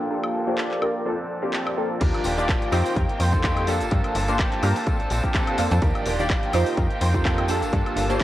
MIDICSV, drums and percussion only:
0, 0, Header, 1, 2, 480
1, 0, Start_track
1, 0, Tempo, 476190
1, 109, Time_signature, 4, 2, 24, 8
1, 8299, End_track
2, 0, Start_track
2, 0, Title_t, "Drums"
2, 238, Note_on_c, 9, 76, 62
2, 339, Note_off_c, 9, 76, 0
2, 583, Note_on_c, 9, 39, 108
2, 684, Note_off_c, 9, 39, 0
2, 718, Note_on_c, 9, 39, 34
2, 819, Note_off_c, 9, 39, 0
2, 825, Note_on_c, 9, 76, 78
2, 926, Note_off_c, 9, 76, 0
2, 1546, Note_on_c, 9, 39, 106
2, 1646, Note_off_c, 9, 39, 0
2, 1681, Note_on_c, 9, 76, 80
2, 1781, Note_off_c, 9, 76, 0
2, 2025, Note_on_c, 9, 42, 82
2, 2025, Note_on_c, 9, 49, 101
2, 2027, Note_on_c, 9, 54, 37
2, 2028, Note_on_c, 9, 36, 123
2, 2029, Note_on_c, 9, 82, 59
2, 2126, Note_off_c, 9, 42, 0
2, 2126, Note_off_c, 9, 49, 0
2, 2128, Note_off_c, 9, 54, 0
2, 2129, Note_off_c, 9, 36, 0
2, 2130, Note_off_c, 9, 82, 0
2, 2160, Note_on_c, 9, 42, 55
2, 2160, Note_on_c, 9, 76, 65
2, 2164, Note_on_c, 9, 82, 33
2, 2258, Note_on_c, 9, 54, 102
2, 2261, Note_off_c, 9, 42, 0
2, 2261, Note_off_c, 9, 76, 0
2, 2264, Note_off_c, 9, 82, 0
2, 2269, Note_on_c, 9, 46, 110
2, 2359, Note_off_c, 9, 54, 0
2, 2369, Note_off_c, 9, 46, 0
2, 2394, Note_on_c, 9, 54, 51
2, 2405, Note_on_c, 9, 82, 65
2, 2495, Note_off_c, 9, 54, 0
2, 2506, Note_off_c, 9, 82, 0
2, 2507, Note_on_c, 9, 36, 127
2, 2508, Note_on_c, 9, 54, 45
2, 2510, Note_on_c, 9, 42, 87
2, 2511, Note_on_c, 9, 39, 125
2, 2514, Note_on_c, 9, 82, 55
2, 2608, Note_off_c, 9, 36, 0
2, 2609, Note_off_c, 9, 54, 0
2, 2611, Note_off_c, 9, 42, 0
2, 2612, Note_off_c, 9, 39, 0
2, 2615, Note_off_c, 9, 82, 0
2, 2640, Note_on_c, 9, 42, 54
2, 2644, Note_on_c, 9, 82, 34
2, 2741, Note_off_c, 9, 42, 0
2, 2743, Note_on_c, 9, 54, 84
2, 2745, Note_off_c, 9, 82, 0
2, 2746, Note_on_c, 9, 46, 102
2, 2746, Note_on_c, 9, 76, 72
2, 2844, Note_off_c, 9, 54, 0
2, 2847, Note_off_c, 9, 46, 0
2, 2847, Note_off_c, 9, 76, 0
2, 2878, Note_on_c, 9, 46, 58
2, 2878, Note_on_c, 9, 54, 51
2, 2882, Note_on_c, 9, 82, 61
2, 2979, Note_off_c, 9, 46, 0
2, 2979, Note_off_c, 9, 54, 0
2, 2983, Note_off_c, 9, 82, 0
2, 2987, Note_on_c, 9, 36, 118
2, 2988, Note_on_c, 9, 42, 83
2, 2992, Note_on_c, 9, 82, 56
2, 3088, Note_off_c, 9, 36, 0
2, 3089, Note_off_c, 9, 42, 0
2, 3093, Note_off_c, 9, 82, 0
2, 3118, Note_on_c, 9, 42, 57
2, 3122, Note_on_c, 9, 82, 34
2, 3219, Note_off_c, 9, 42, 0
2, 3222, Note_off_c, 9, 82, 0
2, 3224, Note_on_c, 9, 46, 104
2, 3224, Note_on_c, 9, 54, 88
2, 3325, Note_off_c, 9, 46, 0
2, 3325, Note_off_c, 9, 54, 0
2, 3356, Note_on_c, 9, 42, 35
2, 3358, Note_on_c, 9, 54, 50
2, 3359, Note_on_c, 9, 36, 63
2, 3360, Note_on_c, 9, 82, 64
2, 3457, Note_off_c, 9, 42, 0
2, 3459, Note_off_c, 9, 54, 0
2, 3460, Note_off_c, 9, 36, 0
2, 3460, Note_off_c, 9, 82, 0
2, 3463, Note_on_c, 9, 42, 79
2, 3464, Note_on_c, 9, 39, 120
2, 3464, Note_on_c, 9, 54, 40
2, 3467, Note_on_c, 9, 36, 118
2, 3467, Note_on_c, 9, 82, 54
2, 3563, Note_off_c, 9, 42, 0
2, 3565, Note_off_c, 9, 39, 0
2, 3565, Note_off_c, 9, 54, 0
2, 3567, Note_off_c, 9, 82, 0
2, 3568, Note_off_c, 9, 36, 0
2, 3595, Note_on_c, 9, 42, 59
2, 3595, Note_on_c, 9, 76, 77
2, 3599, Note_on_c, 9, 82, 34
2, 3695, Note_off_c, 9, 42, 0
2, 3695, Note_off_c, 9, 76, 0
2, 3699, Note_off_c, 9, 82, 0
2, 3701, Note_on_c, 9, 46, 105
2, 3710, Note_on_c, 9, 54, 93
2, 3801, Note_off_c, 9, 46, 0
2, 3811, Note_off_c, 9, 54, 0
2, 3835, Note_on_c, 9, 42, 38
2, 3839, Note_on_c, 9, 54, 53
2, 3839, Note_on_c, 9, 82, 72
2, 3936, Note_off_c, 9, 42, 0
2, 3940, Note_off_c, 9, 54, 0
2, 3940, Note_off_c, 9, 82, 0
2, 3942, Note_on_c, 9, 42, 84
2, 3946, Note_on_c, 9, 54, 38
2, 3947, Note_on_c, 9, 36, 124
2, 3947, Note_on_c, 9, 82, 53
2, 4043, Note_off_c, 9, 42, 0
2, 4047, Note_off_c, 9, 54, 0
2, 4047, Note_off_c, 9, 82, 0
2, 4048, Note_off_c, 9, 36, 0
2, 4074, Note_on_c, 9, 42, 54
2, 4074, Note_on_c, 9, 76, 68
2, 4078, Note_on_c, 9, 82, 32
2, 4174, Note_off_c, 9, 42, 0
2, 4174, Note_off_c, 9, 76, 0
2, 4178, Note_off_c, 9, 82, 0
2, 4182, Note_on_c, 9, 46, 113
2, 4185, Note_on_c, 9, 54, 90
2, 4283, Note_off_c, 9, 46, 0
2, 4286, Note_off_c, 9, 54, 0
2, 4314, Note_on_c, 9, 54, 48
2, 4317, Note_on_c, 9, 42, 36
2, 4321, Note_on_c, 9, 82, 62
2, 4415, Note_off_c, 9, 54, 0
2, 4417, Note_off_c, 9, 42, 0
2, 4421, Note_off_c, 9, 82, 0
2, 4427, Note_on_c, 9, 36, 127
2, 4427, Note_on_c, 9, 42, 85
2, 4428, Note_on_c, 9, 39, 127
2, 4430, Note_on_c, 9, 82, 55
2, 4527, Note_off_c, 9, 42, 0
2, 4528, Note_off_c, 9, 36, 0
2, 4528, Note_off_c, 9, 39, 0
2, 4531, Note_off_c, 9, 82, 0
2, 4556, Note_on_c, 9, 42, 55
2, 4557, Note_on_c, 9, 39, 40
2, 4560, Note_on_c, 9, 82, 33
2, 4657, Note_off_c, 9, 42, 0
2, 4658, Note_off_c, 9, 39, 0
2, 4661, Note_off_c, 9, 82, 0
2, 4664, Note_on_c, 9, 46, 108
2, 4664, Note_on_c, 9, 76, 77
2, 4667, Note_on_c, 9, 54, 97
2, 4765, Note_off_c, 9, 46, 0
2, 4765, Note_off_c, 9, 76, 0
2, 4768, Note_off_c, 9, 54, 0
2, 4796, Note_on_c, 9, 54, 56
2, 4798, Note_on_c, 9, 46, 59
2, 4802, Note_on_c, 9, 82, 63
2, 4897, Note_off_c, 9, 54, 0
2, 4899, Note_off_c, 9, 46, 0
2, 4903, Note_off_c, 9, 82, 0
2, 4906, Note_on_c, 9, 42, 79
2, 4907, Note_on_c, 9, 54, 44
2, 4908, Note_on_c, 9, 36, 126
2, 4910, Note_on_c, 9, 82, 53
2, 5006, Note_off_c, 9, 42, 0
2, 5008, Note_off_c, 9, 54, 0
2, 5009, Note_off_c, 9, 36, 0
2, 5010, Note_off_c, 9, 82, 0
2, 5037, Note_on_c, 9, 42, 55
2, 5041, Note_on_c, 9, 82, 33
2, 5138, Note_off_c, 9, 42, 0
2, 5142, Note_off_c, 9, 82, 0
2, 5143, Note_on_c, 9, 46, 112
2, 5156, Note_on_c, 9, 54, 92
2, 5244, Note_off_c, 9, 46, 0
2, 5257, Note_off_c, 9, 54, 0
2, 5277, Note_on_c, 9, 42, 36
2, 5278, Note_on_c, 9, 54, 53
2, 5279, Note_on_c, 9, 36, 63
2, 5281, Note_on_c, 9, 82, 60
2, 5377, Note_off_c, 9, 42, 0
2, 5379, Note_off_c, 9, 54, 0
2, 5380, Note_off_c, 9, 36, 0
2, 5381, Note_off_c, 9, 82, 0
2, 5381, Note_on_c, 9, 54, 40
2, 5385, Note_on_c, 9, 42, 77
2, 5386, Note_on_c, 9, 39, 125
2, 5388, Note_on_c, 9, 36, 122
2, 5389, Note_on_c, 9, 82, 56
2, 5482, Note_off_c, 9, 54, 0
2, 5486, Note_off_c, 9, 42, 0
2, 5487, Note_off_c, 9, 39, 0
2, 5489, Note_off_c, 9, 36, 0
2, 5490, Note_off_c, 9, 82, 0
2, 5516, Note_on_c, 9, 42, 55
2, 5516, Note_on_c, 9, 76, 81
2, 5520, Note_on_c, 9, 82, 32
2, 5617, Note_off_c, 9, 42, 0
2, 5617, Note_off_c, 9, 76, 0
2, 5621, Note_off_c, 9, 82, 0
2, 5623, Note_on_c, 9, 46, 106
2, 5626, Note_on_c, 9, 54, 89
2, 5724, Note_off_c, 9, 46, 0
2, 5727, Note_off_c, 9, 54, 0
2, 5756, Note_on_c, 9, 54, 58
2, 5758, Note_on_c, 9, 42, 38
2, 5762, Note_on_c, 9, 82, 65
2, 5857, Note_off_c, 9, 54, 0
2, 5858, Note_off_c, 9, 42, 0
2, 5862, Note_off_c, 9, 82, 0
2, 5866, Note_on_c, 9, 42, 80
2, 5869, Note_on_c, 9, 36, 127
2, 5870, Note_on_c, 9, 82, 54
2, 5967, Note_off_c, 9, 42, 0
2, 5969, Note_off_c, 9, 36, 0
2, 5971, Note_off_c, 9, 82, 0
2, 6000, Note_on_c, 9, 42, 51
2, 6000, Note_on_c, 9, 76, 72
2, 6004, Note_on_c, 9, 82, 31
2, 6100, Note_off_c, 9, 42, 0
2, 6100, Note_off_c, 9, 76, 0
2, 6104, Note_off_c, 9, 82, 0
2, 6106, Note_on_c, 9, 46, 114
2, 6113, Note_on_c, 9, 54, 95
2, 6206, Note_off_c, 9, 46, 0
2, 6213, Note_off_c, 9, 54, 0
2, 6239, Note_on_c, 9, 54, 53
2, 6243, Note_on_c, 9, 82, 64
2, 6340, Note_off_c, 9, 54, 0
2, 6344, Note_off_c, 9, 82, 0
2, 6349, Note_on_c, 9, 36, 127
2, 6351, Note_on_c, 9, 42, 79
2, 6352, Note_on_c, 9, 39, 126
2, 6355, Note_on_c, 9, 82, 55
2, 6450, Note_off_c, 9, 36, 0
2, 6452, Note_off_c, 9, 42, 0
2, 6453, Note_off_c, 9, 39, 0
2, 6456, Note_off_c, 9, 82, 0
2, 6482, Note_on_c, 9, 42, 51
2, 6486, Note_on_c, 9, 82, 34
2, 6583, Note_off_c, 9, 42, 0
2, 6584, Note_on_c, 9, 54, 97
2, 6587, Note_off_c, 9, 82, 0
2, 6587, Note_on_c, 9, 46, 110
2, 6587, Note_on_c, 9, 76, 80
2, 6684, Note_off_c, 9, 54, 0
2, 6688, Note_off_c, 9, 46, 0
2, 6688, Note_off_c, 9, 76, 0
2, 6715, Note_on_c, 9, 54, 49
2, 6718, Note_on_c, 9, 46, 64
2, 6722, Note_on_c, 9, 82, 63
2, 6815, Note_off_c, 9, 54, 0
2, 6819, Note_off_c, 9, 46, 0
2, 6823, Note_off_c, 9, 82, 0
2, 6829, Note_on_c, 9, 42, 75
2, 6830, Note_on_c, 9, 36, 124
2, 6833, Note_on_c, 9, 54, 41
2, 6833, Note_on_c, 9, 82, 53
2, 6930, Note_off_c, 9, 42, 0
2, 6931, Note_off_c, 9, 36, 0
2, 6933, Note_off_c, 9, 82, 0
2, 6934, Note_off_c, 9, 54, 0
2, 6960, Note_on_c, 9, 42, 54
2, 6964, Note_on_c, 9, 82, 33
2, 7061, Note_off_c, 9, 42, 0
2, 7065, Note_off_c, 9, 82, 0
2, 7068, Note_on_c, 9, 46, 117
2, 7069, Note_on_c, 9, 54, 95
2, 7169, Note_off_c, 9, 46, 0
2, 7170, Note_off_c, 9, 54, 0
2, 7201, Note_on_c, 9, 54, 55
2, 7202, Note_on_c, 9, 36, 70
2, 7203, Note_on_c, 9, 42, 33
2, 7207, Note_on_c, 9, 82, 60
2, 7302, Note_off_c, 9, 54, 0
2, 7303, Note_off_c, 9, 36, 0
2, 7303, Note_off_c, 9, 42, 0
2, 7307, Note_off_c, 9, 82, 0
2, 7311, Note_on_c, 9, 36, 122
2, 7311, Note_on_c, 9, 42, 78
2, 7312, Note_on_c, 9, 39, 125
2, 7315, Note_on_c, 9, 54, 36
2, 7315, Note_on_c, 9, 82, 52
2, 7412, Note_off_c, 9, 36, 0
2, 7412, Note_off_c, 9, 42, 0
2, 7413, Note_off_c, 9, 39, 0
2, 7415, Note_off_c, 9, 82, 0
2, 7416, Note_off_c, 9, 54, 0
2, 7441, Note_on_c, 9, 42, 51
2, 7441, Note_on_c, 9, 76, 79
2, 7445, Note_on_c, 9, 82, 32
2, 7542, Note_off_c, 9, 42, 0
2, 7542, Note_off_c, 9, 76, 0
2, 7542, Note_on_c, 9, 54, 93
2, 7546, Note_off_c, 9, 82, 0
2, 7549, Note_on_c, 9, 46, 109
2, 7643, Note_off_c, 9, 54, 0
2, 7649, Note_off_c, 9, 46, 0
2, 7684, Note_on_c, 9, 42, 37
2, 7688, Note_on_c, 9, 54, 60
2, 7688, Note_on_c, 9, 82, 67
2, 7785, Note_off_c, 9, 42, 0
2, 7789, Note_off_c, 9, 54, 0
2, 7789, Note_off_c, 9, 82, 0
2, 7791, Note_on_c, 9, 36, 121
2, 7791, Note_on_c, 9, 42, 76
2, 7792, Note_on_c, 9, 54, 39
2, 7795, Note_on_c, 9, 82, 56
2, 7892, Note_off_c, 9, 36, 0
2, 7892, Note_off_c, 9, 42, 0
2, 7893, Note_off_c, 9, 54, 0
2, 7896, Note_off_c, 9, 82, 0
2, 7926, Note_on_c, 9, 42, 49
2, 7926, Note_on_c, 9, 76, 69
2, 7930, Note_on_c, 9, 82, 31
2, 8027, Note_off_c, 9, 42, 0
2, 8027, Note_off_c, 9, 76, 0
2, 8030, Note_on_c, 9, 46, 110
2, 8031, Note_off_c, 9, 82, 0
2, 8039, Note_on_c, 9, 54, 96
2, 8131, Note_off_c, 9, 46, 0
2, 8140, Note_off_c, 9, 54, 0
2, 8161, Note_on_c, 9, 54, 54
2, 8165, Note_on_c, 9, 42, 36
2, 8169, Note_on_c, 9, 82, 64
2, 8262, Note_off_c, 9, 54, 0
2, 8265, Note_off_c, 9, 42, 0
2, 8269, Note_off_c, 9, 82, 0
2, 8299, End_track
0, 0, End_of_file